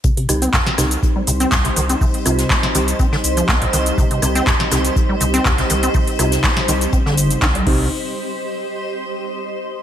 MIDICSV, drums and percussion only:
0, 0, Header, 1, 2, 480
1, 0, Start_track
1, 0, Key_signature, -3, "minor"
1, 0, Tempo, 491803
1, 43, Time_signature, 4, 2, 24, 8
1, 9590, End_track
2, 0, Start_track
2, 0, Title_t, "Drums"
2, 38, Note_on_c, 9, 42, 86
2, 43, Note_on_c, 9, 36, 118
2, 48, Note_on_c, 9, 82, 33
2, 135, Note_off_c, 9, 42, 0
2, 140, Note_off_c, 9, 36, 0
2, 145, Note_off_c, 9, 82, 0
2, 169, Note_on_c, 9, 42, 56
2, 267, Note_off_c, 9, 42, 0
2, 282, Note_on_c, 9, 37, 57
2, 282, Note_on_c, 9, 46, 107
2, 285, Note_on_c, 9, 42, 73
2, 287, Note_on_c, 9, 82, 75
2, 380, Note_off_c, 9, 37, 0
2, 380, Note_off_c, 9, 46, 0
2, 383, Note_off_c, 9, 42, 0
2, 385, Note_off_c, 9, 82, 0
2, 409, Note_on_c, 9, 42, 68
2, 414, Note_on_c, 9, 82, 45
2, 507, Note_off_c, 9, 42, 0
2, 512, Note_off_c, 9, 82, 0
2, 517, Note_on_c, 9, 42, 81
2, 523, Note_on_c, 9, 36, 106
2, 525, Note_on_c, 9, 39, 127
2, 526, Note_on_c, 9, 38, 122
2, 527, Note_on_c, 9, 82, 32
2, 615, Note_off_c, 9, 42, 0
2, 620, Note_off_c, 9, 36, 0
2, 623, Note_off_c, 9, 39, 0
2, 624, Note_off_c, 9, 38, 0
2, 625, Note_off_c, 9, 82, 0
2, 649, Note_on_c, 9, 38, 56
2, 649, Note_on_c, 9, 42, 35
2, 747, Note_off_c, 9, 38, 0
2, 747, Note_off_c, 9, 42, 0
2, 759, Note_on_c, 9, 42, 75
2, 760, Note_on_c, 9, 38, 61
2, 762, Note_on_c, 9, 37, 62
2, 762, Note_on_c, 9, 46, 100
2, 767, Note_on_c, 9, 82, 78
2, 857, Note_off_c, 9, 42, 0
2, 858, Note_off_c, 9, 38, 0
2, 860, Note_off_c, 9, 37, 0
2, 860, Note_off_c, 9, 46, 0
2, 865, Note_off_c, 9, 82, 0
2, 889, Note_on_c, 9, 42, 70
2, 894, Note_on_c, 9, 82, 44
2, 987, Note_off_c, 9, 42, 0
2, 992, Note_off_c, 9, 82, 0
2, 1003, Note_on_c, 9, 36, 120
2, 1004, Note_on_c, 9, 42, 86
2, 1007, Note_on_c, 9, 82, 33
2, 1100, Note_off_c, 9, 36, 0
2, 1102, Note_off_c, 9, 42, 0
2, 1105, Note_off_c, 9, 82, 0
2, 1240, Note_on_c, 9, 42, 68
2, 1242, Note_on_c, 9, 46, 110
2, 1247, Note_on_c, 9, 82, 81
2, 1337, Note_off_c, 9, 42, 0
2, 1340, Note_off_c, 9, 46, 0
2, 1345, Note_off_c, 9, 82, 0
2, 1369, Note_on_c, 9, 42, 73
2, 1374, Note_on_c, 9, 82, 47
2, 1467, Note_off_c, 9, 42, 0
2, 1471, Note_off_c, 9, 82, 0
2, 1476, Note_on_c, 9, 38, 111
2, 1479, Note_on_c, 9, 42, 96
2, 1483, Note_on_c, 9, 36, 107
2, 1485, Note_on_c, 9, 39, 120
2, 1487, Note_on_c, 9, 82, 34
2, 1573, Note_off_c, 9, 38, 0
2, 1576, Note_off_c, 9, 42, 0
2, 1580, Note_off_c, 9, 36, 0
2, 1583, Note_off_c, 9, 39, 0
2, 1585, Note_off_c, 9, 82, 0
2, 1608, Note_on_c, 9, 38, 40
2, 1609, Note_on_c, 9, 42, 57
2, 1706, Note_off_c, 9, 38, 0
2, 1707, Note_off_c, 9, 42, 0
2, 1722, Note_on_c, 9, 46, 104
2, 1725, Note_on_c, 9, 42, 62
2, 1727, Note_on_c, 9, 82, 74
2, 1820, Note_off_c, 9, 46, 0
2, 1822, Note_off_c, 9, 42, 0
2, 1824, Note_off_c, 9, 82, 0
2, 1849, Note_on_c, 9, 42, 71
2, 1854, Note_on_c, 9, 82, 46
2, 1947, Note_off_c, 9, 42, 0
2, 1951, Note_off_c, 9, 82, 0
2, 1963, Note_on_c, 9, 36, 126
2, 1964, Note_on_c, 9, 46, 73
2, 1967, Note_on_c, 9, 82, 32
2, 2060, Note_off_c, 9, 36, 0
2, 2062, Note_off_c, 9, 46, 0
2, 2065, Note_off_c, 9, 82, 0
2, 2089, Note_on_c, 9, 42, 53
2, 2187, Note_off_c, 9, 42, 0
2, 2201, Note_on_c, 9, 42, 69
2, 2202, Note_on_c, 9, 37, 58
2, 2202, Note_on_c, 9, 46, 110
2, 2207, Note_on_c, 9, 82, 76
2, 2299, Note_off_c, 9, 42, 0
2, 2300, Note_off_c, 9, 37, 0
2, 2300, Note_off_c, 9, 46, 0
2, 2305, Note_off_c, 9, 82, 0
2, 2329, Note_on_c, 9, 38, 49
2, 2329, Note_on_c, 9, 42, 69
2, 2334, Note_on_c, 9, 82, 42
2, 2427, Note_off_c, 9, 38, 0
2, 2427, Note_off_c, 9, 42, 0
2, 2432, Note_off_c, 9, 82, 0
2, 2443, Note_on_c, 9, 36, 113
2, 2444, Note_on_c, 9, 42, 89
2, 2445, Note_on_c, 9, 39, 121
2, 2447, Note_on_c, 9, 82, 33
2, 2449, Note_on_c, 9, 38, 112
2, 2540, Note_off_c, 9, 36, 0
2, 2542, Note_off_c, 9, 42, 0
2, 2543, Note_off_c, 9, 39, 0
2, 2545, Note_off_c, 9, 82, 0
2, 2546, Note_off_c, 9, 38, 0
2, 2570, Note_on_c, 9, 38, 58
2, 2570, Note_on_c, 9, 42, 35
2, 2667, Note_off_c, 9, 38, 0
2, 2667, Note_off_c, 9, 42, 0
2, 2679, Note_on_c, 9, 42, 74
2, 2682, Note_on_c, 9, 46, 109
2, 2687, Note_on_c, 9, 82, 74
2, 2776, Note_off_c, 9, 42, 0
2, 2780, Note_off_c, 9, 46, 0
2, 2785, Note_off_c, 9, 82, 0
2, 2810, Note_on_c, 9, 42, 65
2, 2814, Note_on_c, 9, 82, 44
2, 2907, Note_off_c, 9, 42, 0
2, 2912, Note_off_c, 9, 82, 0
2, 2919, Note_on_c, 9, 42, 87
2, 2923, Note_on_c, 9, 36, 125
2, 2927, Note_on_c, 9, 82, 33
2, 3017, Note_off_c, 9, 42, 0
2, 3020, Note_off_c, 9, 36, 0
2, 3025, Note_off_c, 9, 82, 0
2, 3050, Note_on_c, 9, 38, 43
2, 3148, Note_off_c, 9, 38, 0
2, 3156, Note_on_c, 9, 42, 64
2, 3163, Note_on_c, 9, 46, 113
2, 3167, Note_on_c, 9, 82, 79
2, 3254, Note_off_c, 9, 42, 0
2, 3260, Note_off_c, 9, 46, 0
2, 3265, Note_off_c, 9, 82, 0
2, 3290, Note_on_c, 9, 42, 67
2, 3294, Note_on_c, 9, 82, 44
2, 3387, Note_off_c, 9, 42, 0
2, 3392, Note_off_c, 9, 82, 0
2, 3403, Note_on_c, 9, 36, 117
2, 3406, Note_on_c, 9, 39, 127
2, 3407, Note_on_c, 9, 82, 34
2, 3408, Note_on_c, 9, 42, 84
2, 3411, Note_on_c, 9, 38, 110
2, 3500, Note_off_c, 9, 36, 0
2, 3503, Note_off_c, 9, 39, 0
2, 3505, Note_off_c, 9, 82, 0
2, 3506, Note_off_c, 9, 42, 0
2, 3508, Note_off_c, 9, 38, 0
2, 3530, Note_on_c, 9, 42, 58
2, 3627, Note_off_c, 9, 42, 0
2, 3640, Note_on_c, 9, 42, 64
2, 3642, Note_on_c, 9, 46, 108
2, 3647, Note_on_c, 9, 82, 74
2, 3737, Note_off_c, 9, 42, 0
2, 3740, Note_off_c, 9, 46, 0
2, 3745, Note_off_c, 9, 82, 0
2, 3769, Note_on_c, 9, 42, 71
2, 3774, Note_on_c, 9, 82, 43
2, 3867, Note_off_c, 9, 42, 0
2, 3872, Note_off_c, 9, 82, 0
2, 3883, Note_on_c, 9, 36, 123
2, 3887, Note_on_c, 9, 42, 93
2, 3887, Note_on_c, 9, 82, 31
2, 3980, Note_off_c, 9, 36, 0
2, 3984, Note_off_c, 9, 42, 0
2, 3985, Note_off_c, 9, 82, 0
2, 4009, Note_on_c, 9, 42, 52
2, 4107, Note_off_c, 9, 42, 0
2, 4119, Note_on_c, 9, 42, 68
2, 4122, Note_on_c, 9, 37, 63
2, 4122, Note_on_c, 9, 46, 111
2, 4127, Note_on_c, 9, 82, 77
2, 4217, Note_off_c, 9, 42, 0
2, 4220, Note_off_c, 9, 37, 0
2, 4220, Note_off_c, 9, 46, 0
2, 4225, Note_off_c, 9, 82, 0
2, 4250, Note_on_c, 9, 42, 66
2, 4254, Note_on_c, 9, 82, 42
2, 4347, Note_off_c, 9, 42, 0
2, 4352, Note_off_c, 9, 82, 0
2, 4363, Note_on_c, 9, 36, 121
2, 4363, Note_on_c, 9, 42, 96
2, 4364, Note_on_c, 9, 38, 106
2, 4365, Note_on_c, 9, 39, 118
2, 4367, Note_on_c, 9, 82, 33
2, 4460, Note_off_c, 9, 36, 0
2, 4460, Note_off_c, 9, 42, 0
2, 4462, Note_off_c, 9, 38, 0
2, 4463, Note_off_c, 9, 39, 0
2, 4465, Note_off_c, 9, 82, 0
2, 4489, Note_on_c, 9, 38, 61
2, 4489, Note_on_c, 9, 42, 35
2, 4587, Note_off_c, 9, 38, 0
2, 4587, Note_off_c, 9, 42, 0
2, 4600, Note_on_c, 9, 38, 58
2, 4600, Note_on_c, 9, 42, 73
2, 4603, Note_on_c, 9, 37, 62
2, 4603, Note_on_c, 9, 46, 116
2, 4607, Note_on_c, 9, 82, 76
2, 4697, Note_off_c, 9, 42, 0
2, 4698, Note_off_c, 9, 38, 0
2, 4700, Note_off_c, 9, 37, 0
2, 4700, Note_off_c, 9, 46, 0
2, 4705, Note_off_c, 9, 82, 0
2, 4729, Note_on_c, 9, 42, 64
2, 4734, Note_on_c, 9, 82, 41
2, 4827, Note_off_c, 9, 42, 0
2, 4832, Note_off_c, 9, 82, 0
2, 4843, Note_on_c, 9, 36, 127
2, 4844, Note_on_c, 9, 42, 82
2, 4847, Note_on_c, 9, 82, 33
2, 4940, Note_off_c, 9, 36, 0
2, 4941, Note_off_c, 9, 42, 0
2, 4945, Note_off_c, 9, 82, 0
2, 5077, Note_on_c, 9, 42, 62
2, 5083, Note_on_c, 9, 46, 118
2, 5087, Note_on_c, 9, 82, 77
2, 5175, Note_off_c, 9, 42, 0
2, 5180, Note_off_c, 9, 46, 0
2, 5185, Note_off_c, 9, 82, 0
2, 5210, Note_on_c, 9, 42, 69
2, 5214, Note_on_c, 9, 82, 46
2, 5307, Note_off_c, 9, 42, 0
2, 5312, Note_off_c, 9, 82, 0
2, 5323, Note_on_c, 9, 36, 119
2, 5325, Note_on_c, 9, 39, 127
2, 5325, Note_on_c, 9, 42, 87
2, 5326, Note_on_c, 9, 38, 119
2, 5327, Note_on_c, 9, 82, 34
2, 5421, Note_off_c, 9, 36, 0
2, 5422, Note_off_c, 9, 42, 0
2, 5423, Note_off_c, 9, 38, 0
2, 5423, Note_off_c, 9, 39, 0
2, 5425, Note_off_c, 9, 82, 0
2, 5446, Note_on_c, 9, 38, 37
2, 5449, Note_on_c, 9, 42, 53
2, 5543, Note_off_c, 9, 38, 0
2, 5547, Note_off_c, 9, 42, 0
2, 5558, Note_on_c, 9, 42, 71
2, 5562, Note_on_c, 9, 46, 105
2, 5567, Note_on_c, 9, 82, 74
2, 5655, Note_off_c, 9, 42, 0
2, 5660, Note_off_c, 9, 46, 0
2, 5665, Note_off_c, 9, 82, 0
2, 5689, Note_on_c, 9, 42, 66
2, 5694, Note_on_c, 9, 82, 43
2, 5787, Note_off_c, 9, 42, 0
2, 5792, Note_off_c, 9, 82, 0
2, 5796, Note_on_c, 9, 46, 82
2, 5803, Note_on_c, 9, 36, 123
2, 5807, Note_on_c, 9, 82, 34
2, 5894, Note_off_c, 9, 46, 0
2, 5901, Note_off_c, 9, 36, 0
2, 5904, Note_off_c, 9, 82, 0
2, 5929, Note_on_c, 9, 42, 49
2, 6027, Note_off_c, 9, 42, 0
2, 6042, Note_on_c, 9, 37, 63
2, 6042, Note_on_c, 9, 46, 109
2, 6044, Note_on_c, 9, 42, 75
2, 6047, Note_on_c, 9, 82, 78
2, 6140, Note_off_c, 9, 37, 0
2, 6140, Note_off_c, 9, 46, 0
2, 6141, Note_off_c, 9, 42, 0
2, 6145, Note_off_c, 9, 82, 0
2, 6169, Note_on_c, 9, 42, 64
2, 6172, Note_on_c, 9, 38, 46
2, 6174, Note_on_c, 9, 82, 44
2, 6267, Note_off_c, 9, 42, 0
2, 6269, Note_off_c, 9, 38, 0
2, 6272, Note_off_c, 9, 82, 0
2, 6281, Note_on_c, 9, 42, 87
2, 6283, Note_on_c, 9, 36, 116
2, 6284, Note_on_c, 9, 38, 127
2, 6286, Note_on_c, 9, 39, 115
2, 6287, Note_on_c, 9, 82, 33
2, 6379, Note_off_c, 9, 42, 0
2, 6381, Note_off_c, 9, 36, 0
2, 6382, Note_off_c, 9, 38, 0
2, 6383, Note_off_c, 9, 39, 0
2, 6385, Note_off_c, 9, 82, 0
2, 6410, Note_on_c, 9, 38, 67
2, 6410, Note_on_c, 9, 42, 35
2, 6507, Note_off_c, 9, 38, 0
2, 6507, Note_off_c, 9, 42, 0
2, 6523, Note_on_c, 9, 42, 68
2, 6523, Note_on_c, 9, 46, 108
2, 6527, Note_on_c, 9, 82, 77
2, 6620, Note_off_c, 9, 42, 0
2, 6620, Note_off_c, 9, 46, 0
2, 6625, Note_off_c, 9, 82, 0
2, 6650, Note_on_c, 9, 42, 64
2, 6654, Note_on_c, 9, 82, 43
2, 6747, Note_off_c, 9, 42, 0
2, 6752, Note_off_c, 9, 82, 0
2, 6761, Note_on_c, 9, 42, 85
2, 6763, Note_on_c, 9, 36, 123
2, 6767, Note_on_c, 9, 82, 34
2, 6858, Note_off_c, 9, 42, 0
2, 6860, Note_off_c, 9, 36, 0
2, 6865, Note_off_c, 9, 82, 0
2, 6894, Note_on_c, 9, 38, 49
2, 6992, Note_off_c, 9, 38, 0
2, 7001, Note_on_c, 9, 42, 66
2, 7003, Note_on_c, 9, 46, 112
2, 7007, Note_on_c, 9, 82, 81
2, 7098, Note_off_c, 9, 42, 0
2, 7100, Note_off_c, 9, 46, 0
2, 7105, Note_off_c, 9, 82, 0
2, 7130, Note_on_c, 9, 42, 65
2, 7135, Note_on_c, 9, 82, 46
2, 7227, Note_off_c, 9, 42, 0
2, 7232, Note_off_c, 9, 82, 0
2, 7234, Note_on_c, 9, 42, 84
2, 7240, Note_on_c, 9, 38, 111
2, 7243, Note_on_c, 9, 36, 119
2, 7246, Note_on_c, 9, 39, 116
2, 7247, Note_on_c, 9, 82, 34
2, 7332, Note_off_c, 9, 42, 0
2, 7337, Note_off_c, 9, 38, 0
2, 7340, Note_off_c, 9, 36, 0
2, 7343, Note_off_c, 9, 39, 0
2, 7345, Note_off_c, 9, 82, 0
2, 7370, Note_on_c, 9, 42, 51
2, 7467, Note_off_c, 9, 42, 0
2, 7483, Note_on_c, 9, 36, 111
2, 7483, Note_on_c, 9, 49, 85
2, 7580, Note_off_c, 9, 36, 0
2, 7580, Note_off_c, 9, 49, 0
2, 9590, End_track
0, 0, End_of_file